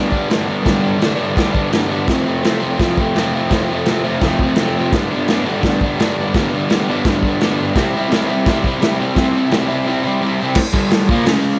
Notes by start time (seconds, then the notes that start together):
Already playing: G2 D3 G3 B3
0.10 B3 D4, kick
0.14 G3
0.29 G2 D3 G3 B3 D4, snare, crash
0.46 B3 D4
0.51 G3
0.63 G2 D3 G3 B3, kick, crash
0.67 D4, snare
0.81 B3 D4
0.86 G3
0.99 D3 G3 B3, snare, crash
1.03 D4
1.15 G2 D3 G3 B3 D4
1.34 D3 G3 B3 D4, kick, crash
1.39 snare
1.53 G3 B3 D4, kick
1.71 G2 D3 G3 B3, snare, crash
1.75 D4
1.89 G3 B3 D4
2.07 F2 C3 F3 A3 C4, kick, snare, crash
2.24 A3 C4
2.28 F3
2.43 C3 F3 A3 C4, snare, crash
2.60 C3 F3 A3 C4
2.64 F2
2.77 C3 F3 A3, kick, snare, crash
2.82 C4
2.98 A3 C4, kick
3.02 F3
3.15 F2 C3 F3 A3, snare, crash
3.20 C4
3.33 A3 C4
3.38 F3
3.50 F2 C3 F3 A3 C4, kick, snare, crash
3.69 F3 A3 C4
3.86 C3 F3 A3, snare, crash
3.91 C4
4.04 F2 C3 F3 A3 C4
4.21 C3 F3 A3, kick, snare, crash
4.26 C4
4.39 A3 C4, kick
4.44 F3
4.56 F2 C3, snare, crash
4.60 F3 A3 C4
4.76 F3 A3 C4
4.92 G2 D3 G3 B3, kick, snare, crash
4.96 D4
5.11 B3 D4
5.15 G3
5.28 D3 G3, snare, crash
5.32 B3 D4
5.45 D3 G3 B3 D4
5.49 G2
5.61 D3 G3 B3, kick, snare, crash
5.66 D4
5.81 B3 D4, kick
5.86 G3
5.98 G2 D3 G3 B3, snare, crash
6.02 D4
6.17 B3 D4
6.21 G3
6.34 G2 D3 G3 B3, kick, snare, crash
6.39 D4
6.52 G3 B3 D4
6.70 D3 G3 B3, snare, crash
6.75 D4
6.89 G2 D3 G3 B3 D4
7.05 D3 G3, kick, snare, crash
7.10 B3 D4
7.23 D4, kick
7.28 G3 B3
7.40 G2 D3 G3 B3, snare, crash
7.45 D4
7.57 B3 D4
7.62 G3
7.75 C3 G3 C4 E4, kick, snare, crash
7.93 G3 C4 E4
8.09 C3 G3 C4, snare, crash
8.14 E4
8.26 G3 C4 E4
8.31 C3
8.46 C3 G3 C4 E4, kick, snare, crash
8.63 C4 E4, kick
8.68 G3
8.80 C3 G3 C4 E4, snare, crash
8.99 G3 C4 E4
9.15 C3 G3 C4 E4, kick, snare, crash
9.32 C4 E4
9.37 G3
9.50 C3 G3 C4 E4, snare, crash
9.68 G3 C4 E4
9.72 C3
9.84 C3 G3 C4
9.89 E4
10.03 G3 C4 E4
10.21 C3 G3 C4 E4
10.39 C4 E4
10.44 G3
10.55 kick, snare, crash
10.73 G2 D3 G3, kick
10.91 snare, open hi-hat
11.09 A#2 F3 A#3, kick
11.26 C#3 G#3 C#4, snare, open hi-hat